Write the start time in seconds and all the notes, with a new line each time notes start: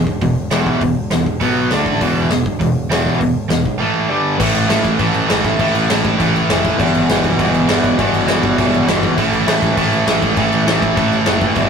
0.07 E1, kick
0.22 E1 E2 B2, kick, open hi-hat
0.51 E1 E2 B2 E3, snare, open hi-hat
0.66 B1, kick
0.81 E1 E2 B2, kick, open hi-hat
0.97 E1
1.11 E1 E2 B2, snare, open hi-hat
1.26 E1, kick
1.41 B1 B2 F#3 B3, kick, open hi-hat
1.71 D2 D3 A3 D4, snare, open hi-hat
1.86 A1, kick
2.01 E1 E2 B2 E3, kick, open hi-hat
2.16 E1
2.31 E1 E2 B2, snare, open hi-hat
2.46 E1, kick
2.61 E1 E2 B2, kick, open hi-hat
2.90 E1 E2 B2 E3, snare, open hi-hat
3.06 B1, kick
3.21 E1 E2 B2, kick, open hi-hat
3.34 E1
3.49 E1 E2 B2, snare, open hi-hat
3.65 B1, kick
3.80 A2 E3 A3
4.10 G2 D3 G3
4.38 A1 A2 E3 A3, kick, crash
4.55 A1, crash
4.69 A1 A2 E3 A3, snare, crash
4.84 A1, kick, crash
4.99 A1 A2 E3 A3, kick, crash
5.14 A1, crash
5.29 A1 A2 E3 A3, snare, crash
5.44 A1, kick, crash
5.59 A1 A2 E3 A3, kick, crash
5.75 A1, crash
5.89 A1 A2 E3 A3, snare, crash
6.05 A1, kick, crash
6.18 A1 A2 E3 A3, kick, crash
6.36 crash
6.49 F1 A2 E3 A3, snare, crash
6.65 kick, crash
6.78 G1 E2 B2 E3, kick, crash
6.95 G1, crash
7.09 G1 E2 B2 E3, snare, crash
7.24 G1, kick, crash
7.39 G1 E2 B2 E3, kick, crash
7.53 G1, crash
7.68 G1 E2 B2 E3, snare, crash
7.84 G1, kick, crash
7.97 G1 E2 B2 E3, kick, crash
8.13 G1, crash
8.27 G1 E2 B2 E3, snare, crash
8.43 G1, kick, crash
8.58 G1 E2 B2 E3, kick, crash
8.74 crash
8.87 G1 E2 B2 E3, snare, crash
9.03 kick, crash
9.16 A1 A2 E3 A3, kick, crash
9.31 A1, crash
9.46 A1 A2 E3 A3, snare, crash
9.62 A1, kick, crash
9.75 A1 A2 E3 A3, kick, crash
9.91 A1, crash
10.06 A1 A2 E3 A3, snare, crash
10.22 A1, kick, crash
10.37 A1 A2 E3 A3, kick, crash
10.52 A1, crash
10.66 A1 A2 E3 A3, snare, crash
10.82 A1, kick, crash
10.96 A1 A2 E3 A3, kick, crash
11.13 crash
11.26 F#1 A2 E3 A3, snare, crash
11.41 kick, crash
11.55 G1 E2 B2 E3, kick, crash